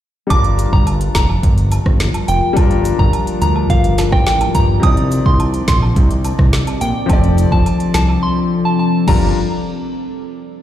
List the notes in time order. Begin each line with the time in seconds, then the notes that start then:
0.27 G1 G3 D4 F4 A#4 D5 D6, kick, closed hi-hat, high woodblock
0.32 F4 A#4
0.44 closed hi-hat
0.58 closed hi-hat, cabasa
0.73 G1 A#5, kick
0.87 closed hi-hat, high woodblock
1.01 closed hi-hat
1.15 F1 A#5, kick, snare, closed hi-hat, cabasa
1.29 high woodblock
1.43 G1, kick, closed hi-hat
1.58 closed hi-hat
1.72 closed hi-hat, cabasa, high woodblock
1.86 G1, kick, cross-stick
2.00 snare, closed hi-hat
2.14 closed hi-hat, high woodblock
2.28 F1 G5, closed hi-hat, cabasa
2.53 G1 G3 D4, kick, closed hi-hat, high woodblock
2.58 F4 A#4
2.71 closed hi-hat
2.85 closed hi-hat, cabasa
2.99 G1 A#5, kick
3.13 closed hi-hat, high woodblock
3.27 closed hi-hat
3.41 D2 A#5, closed hi-hat, cabasa
3.56 high woodblock
3.70 G1 F5, kick, closed hi-hat
3.84 closed hi-hat
3.98 snare, closed hi-hat, cabasa, high woodblock
4.12 A1 G5, kick, cross-stick
4.26 G5, snare, closed hi-hat
4.41 closed hi-hat, high woodblock
4.55 G1 A#5, kick, closed hi-hat, cabasa
4.80 C2 C3 C4 D#4 D#6, kick, closed hi-hat, high woodblock
4.84 D#4 D5
4.97 closed hi-hat
5.11 closed hi-hat, cabasa
5.26 C2 C6, kick
5.40 closed hi-hat, high woodblock
5.54 closed hi-hat
5.68 A#1 C6, kick, snare, closed hi-hat, cabasa
5.82 high woodblock
5.96 C2, kick, closed hi-hat
6.11 closed hi-hat
6.24 closed hi-hat, cabasa, high woodblock
6.39 C2, kick, cross-stick
6.53 snare, closed hi-hat
6.67 closed hi-hat, high woodblock
6.81 A#1 G5, closed hi-hat, cabasa
7.06 F1 F3 C4 A4, kick, closed hi-hat, high woodblock
7.11 A4 D5
7.24 closed hi-hat
7.38 closed hi-hat, cabasa
7.52 F1 A5, kick
7.66 closed hi-hat, high woodblock
7.80 closed hi-hat
7.94 C2 A5, snare, closed hi-hat, cabasa
8.09 high woodblock
8.23 C6
8.65 A5
8.79 A5
9.08 G1 G3 D4 F4 A#4 A#5, kick, crash, high woodblock